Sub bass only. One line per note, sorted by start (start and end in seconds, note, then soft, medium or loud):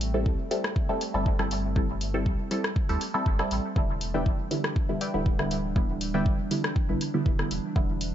0.00 0.28 A1 loud
0.26 0.35 C2 medium
1.14 2.28 G1 loud
2.26 2.35 C2 medium
2.89 2.97 D2 medium
3.26 3.43 G1 loud
3.51 3.60 A1 medium
3.76 4.28 E1 medium
4.26 4.35 G1 medium
5.14 6.27 D1 medium
6.26 6.35 G1 medium
6.89 6.97 A1 medium
7.26 7.43 E1 loud
7.51 7.60 E1 medium
7.76 8.15 E1 loud